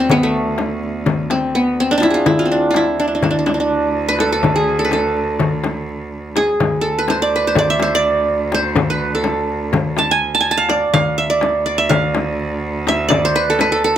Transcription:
0.00 2.26 D2 medium
0.00 0.17 C4 medium
0.00 0.25 D4 medium
0.10 1.37 B3 medium
0.10 darbuka dum loud
0.10 frame drum medium
0.23 2.01 A3 medium
0.58 darbuka tek medium
0.58 frame drum medium
0.83 darbuka ka soft
1.06 frame drum medium
1.06 darbuka dum medium
1.30 1.61 C4 medium
1.30 darbuka tek medium
1.30 frame drum medium
1.55 1.86 B3 medium
1.55 darbuka ka soft
1.80 1.92 C4 medium
1.91 2.45 C4 medium
1.91 1.97 D4 medium
1.98 2.51 D4 medium
1.98 2.09 F4 medium
2.02 2.20 E4 medium
2.02 darbuka tek medium
2.02 frame drum medium
2.10 2.32 F4 medium
2.10 3.32 G#4 medium
2.26 6.60 D2 medium
2.26 2.45 E4 medium
2.26 frame drum medium
2.26 darbuka dum medium
2.39 2.70 F4 medium
2.46 4.06 C4 medium
2.52 2.99 D4 medium
2.71 2.82 F4 medium
2.71 frame drum medium
2.75 4.15 E4 medium
2.75 darbuka tek medium
2.99 3.07 D4 medium
2.99 darbuka ka soft
3.08 3.14 D4 medium
3.15 3.23 D4 medium
3.22 3.30 D4 medium
3.22 frame drum medium
3.22 darbuka dum medium
3.31 3.38 D4 medium
3.39 3.46 D4 soft
3.46 3.54 D4 medium
3.46 darbuka tek medium
3.46 frame drum medium
3.54 3.60 D4 medium
3.60 5.09 D4 medium
3.72 darbuka ka soft
4.09 4.84 B4 loud
4.19 4.32 A4 medium
4.19 darbuka tek medium
4.19 frame drum medium
4.32 4.62 A4 medium
4.43 frame drum medium
4.43 darbuka dum medium
4.56 4.85 G#4 medium
4.79 4.92 A4 medium
4.85 5.94 B4 medium
4.91 6.10 A4 medium
4.91 darbuka tek medium
4.91 frame drum medium
5.17 darbuka ka soft
5.39 frame drum medium
5.39 darbuka dum medium
5.64 darbuka tek medium
5.64 frame drum medium
5.89 darbuka ka soft
6.36 6.87 G#4 medium
6.36 darbuka tek medium
6.36 frame drum medium
6.60 10.94 D2 medium
6.60 frame drum medium
6.60 darbuka dum medium
6.81 7.98 A4 medium
6.99 7.16 B4 medium
7.08 7.42 C5 medium
7.08 darbuka tek medium
7.08 frame drum medium
7.22 7.58 D5 medium
7.32 7.53 B4 medium
7.32 darbuka ka soft
7.47 7.82 C5 medium
7.55 7.94 D5 medium
7.55 frame drum medium
7.55 darbuka dum medium
7.70 8.62 E5 medium
7.80 8.54 C5 medium
7.80 darbuka tek medium
7.80 frame drum medium
7.95 8.93 D5 medium
8.52 8.96 C5 medium
8.52 darbuka tek medium
8.52 frame drum medium
8.76 frame drum loud
8.76 darbuka dum medium
8.90 9.99 B4 medium
9.15 10.17 A4 medium
9.24 darbuka tek medium
9.24 frame drum medium
9.49 darbuka ka soft
9.73 frame drum medium
9.73 darbuka dum medium
9.97 10.17 A5 medium
9.97 darbuka tek medium
9.97 frame drum medium
10.11 10.40 G#5 medium
10.22 darbuka ka soft
10.35 10.47 A5 medium
10.41 10.57 G#5 medium
10.51 11.28 A5 medium
10.57 10.93 F5 medium
10.69 11.29 D5 medium
10.69 darbuka tek medium
10.69 frame drum medium
10.93 13.98 D2 medium
10.93 11.24 F5 medium
10.93 frame drum medium
10.93 darbuka dum medium
11.18 11.78 E5 medium
11.30 11.65 D5 medium
11.41 darbuka tek medium
11.41 frame drum medium
11.66 12.64 D5 medium
11.66 darbuka ka soft
11.78 11.95 E5 medium
11.89 12.78 F5 medium
11.89 frame drum medium
11.89 darbuka dum medium
12.15 darbuka tek medium
12.15 frame drum medium
12.40 darbuka ka soft
12.87 13.80 E5 medium
12.87 darbuka tek medium
12.87 frame drum medium
13.09 13.98 D5 medium
13.09 frame drum loud
13.09 darbuka dum medium
13.25 13.42 C5 loud
13.36 13.60 B4 medium
13.48 13.72 A4 medium
13.48 darbuka ka soft
13.59 13.98 B4 medium
13.59 darbuka tek medium
13.59 frame drum medium
13.72 13.84 A4 medium
13.84 13.98 A4 medium

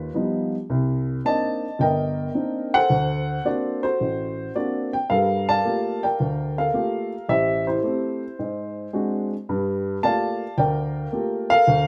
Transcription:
0.00 0.50 F4 medium
0.00 0.48 B4 medium
0.14 0.54 F3 soft
0.14 0.54 G3 soft
0.14 0.54 B3 soft
0.14 0.54 D#4 medium
0.70 1.17 C2 medium
1.25 1.64 A#3 medium
1.25 1.64 C4 soft
1.25 1.65 D4 soft
1.25 1.64 D#4 medium
1.25 2.32 D5 medium
1.25 1.81 D#5 medium
1.25 1.82 A5 medium
1.79 2.27 G1 medium
1.79 2.86 A#4 medium
1.79 2.86 D#5 medium
1.79 2.76 G5 medium
2.34 2.74 A#3 soft
2.34 2.74 C4 soft
2.34 2.74 D4 soft
2.34 2.74 D#4 soft
2.74 3.80 A4 medium
2.74 3.79 C5 medium
2.74 3.47 F#5 loud
2.90 3.37 D2 medium
3.45 3.84 A#3 soft
3.45 3.84 C4 soft
3.45 3.84 D4 soft
3.45 3.82 F#4 medium
3.45 3.84 D5 medium
3.83 4.54 F#4 soft
3.83 4.89 A4 medium
3.83 4.50 C5 medium
4.00 4.48 A1 soft
4.55 4.94 A#3 soft
4.55 4.94 C4 soft
4.55 4.94 D4 soft
4.55 4.94 F#4 medium
4.55 4.90 D5 medium
4.93 5.10 G5 medium
5.10 5.57 G2 medium
5.10 5.57 G3 medium
5.10 6.15 A4 medium
5.10 6.02 A#4 medium
5.10 5.48 F5 medium
5.49 6.02 D5 medium
5.49 6.54 F5 medium
5.49 6.04 A5 medium
5.64 6.04 A3 soft
5.64 6.04 A#3 soft
5.64 6.04 F4 soft
5.64 6.04 G4 medium
6.03 6.57 A#4 medium
6.03 7.08 D5 medium
6.03 6.59 G5 medium
6.20 6.67 D2 medium
6.58 7.25 A4 medium
6.58 7.25 A#4 medium
6.58 7.31 F5 medium
6.74 7.13 A3 medium
6.74 7.13 A#3 soft
6.74 7.13 F4 soft
6.74 7.13 G4 soft
7.29 7.76 A1 medium
7.29 7.66 G4 medium
7.29 7.66 C5 medium
7.29 7.64 E5 medium
7.67 8.35 E4 soft
7.67 7.82 G4 soft
7.67 9.27 C5 medium
7.83 8.22 A3 soft
7.83 8.23 C4 soft
7.83 8.23 G4 medium
8.39 8.86 G#2 medium
8.93 9.32 G#3 medium
8.93 9.33 C4 soft
8.93 9.33 D4 soft
8.93 9.33 F#4 medium
9.49 9.96 G2 medium
9.49 9.96 G3 medium
10.03 10.42 A3 medium
10.03 10.42 A#3 soft
10.03 10.42 F4 soft
10.03 10.43 G4 medium
10.03 10.58 D5 medium
10.03 11.09 F5 medium
10.03 10.59 A5 medium
10.58 11.05 D2 medium
10.58 11.50 A#4 medium
10.58 11.64 D5 medium
10.58 11.53 G5 medium
11.12 11.52 A3 soft
11.12 11.52 A#3 soft
11.12 11.52 F4 soft
11.12 11.52 G4 medium
11.50 11.87 A4 medium
11.50 11.87 A#4 medium
11.50 11.87 F5 loud
11.67 11.87 D2 medium

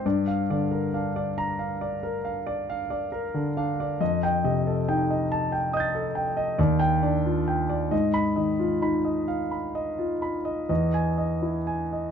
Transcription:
0.06 3.97 G2 medium
0.06 0.41 D5 soft
0.27 0.63 F5 soft
0.50 1.21 D3 soft
0.50 0.86 D5 soft
0.71 1.07 A#4 soft
0.94 1.65 D4 soft
0.94 1.30 F5 soft
1.16 1.52 D5 soft
1.38 1.73 A#5 medium
1.59 1.95 F5 soft
1.81 2.17 D5 soft
2.03 2.38 A#4 soft
2.25 2.60 F5 soft
2.47 2.82 D5 soft
2.70 3.04 F5 medium
2.90 3.26 D5 soft
3.12 3.47 A#4 soft
3.34 3.70 D3 soft
3.57 4.01 D4 soft
3.57 3.92 F5 soft
3.80 4.01 D5 soft
4.01 6.54 F2 medium
4.01 4.35 D#5 soft
4.23 4.58 G5 soft
4.44 5.13 C3 soft
4.44 4.79 D#5 soft
4.67 5.01 A4 soft
4.89 5.56 D#4 soft
4.89 5.22 G5 soft
5.10 5.44 D#5 soft
5.32 5.65 A5 medium
5.52 5.85 G5 soft
5.73 6.07 D#5 soft
5.73 6.54 D#6 soft
5.73 6.56 G6 soft
5.80 6.58 A6 soft
5.95 6.28 A4 soft
6.15 6.49 G5 soft
6.37 6.58 D#5 soft
6.58 7.89 D#2 medium
6.58 6.93 D5 soft
6.79 7.15 G5 medium
7.02 7.74 D4 soft
7.02 7.38 D5 soft
7.25 7.61 F4 soft
7.48 7.83 G5 soft
7.70 7.92 D5 soft
7.91 10.65 G#2 soft
7.91 8.28 D#5 soft
8.14 8.50 B5 medium
8.36 9.09 D#3 soft
8.36 8.73 D#5 soft
8.59 8.96 F4 soft
8.82 9.56 D#4 soft
8.82 9.19 B5 soft
9.05 9.42 D#5 soft
9.28 9.65 F5 soft
9.51 9.89 B5 soft
9.75 10.13 D#5 soft
9.99 10.36 F4 soft
10.22 10.60 B5 soft
10.45 10.68 D#5 soft
10.69 12.11 E2 soft
10.69 11.08 D#5 soft
10.94 11.33 G#5 soft
11.18 11.57 D#5 soft
11.42 11.82 E4 soft
11.67 12.07 G#5 soft
11.93 12.11 D#5 soft

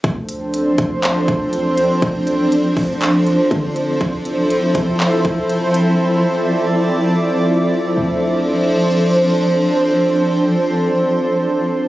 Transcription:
0.04 0.75 D2 loud
0.04 7.93 F3 medium
0.04 3.97 C4 medium
0.04 3.97 D4 medium
0.04 7.93 A4 medium
0.04 3.97 C5 medium
0.04 kick loud
0.04 closed hi-hat medium
0.29 closed hi-hat medium
0.54 closed hi-hat medium
0.78 1.26 D2 loud
0.78 kick medium
0.78 closed hi-hat medium
1.03 clap loud
1.03 closed hi-hat medium
1.28 1.76 D2 loud
1.28 kick medium
1.28 closed hi-hat medium
1.53 closed hi-hat medium
1.78 closed hi-hat medium
2.02 2.74 D2 loud
2.02 kick loud
2.02 closed hi-hat medium
2.27 closed hi-hat medium
2.52 closed hi-hat medium
2.77 3.24 D2 loud
2.77 kick medium
2.77 open hi-hat medium
3.02 clap loud
3.02 closed hi-hat medium
3.27 closed hi-hat medium
3.51 3.99 D3 loud
3.51 kick medium
3.51 closed hi-hat medium
3.76 closed hi-hat medium
4.01 4.39 F1 loud
4.01 7.93 C4 medium
4.01 7.93 E4 medium
4.01 5.97 C5 medium
4.01 kick loud
4.01 closed hi-hat medium
4.25 closed hi-hat medium
4.38 4.58 A1 loud
4.50 closed hi-hat medium
4.57 4.74 F1 loud
4.75 5.23 F1 loud
4.75 kick medium
4.75 closed hi-hat medium
5.00 clap loud
5.00 closed hi-hat medium
5.25 5.96 F1 loud
5.25 kick medium
5.25 closed hi-hat medium
5.50 closed hi-hat medium
5.74 closed hi-hat medium
5.99 7.95 D5 medium
7.97 9.92 D2 loud
7.97 11.88 F3 medium
7.97 11.88 C4 medium
7.97 11.88 D4 medium
7.97 11.88 A4 medium
7.97 11.88 C5 medium

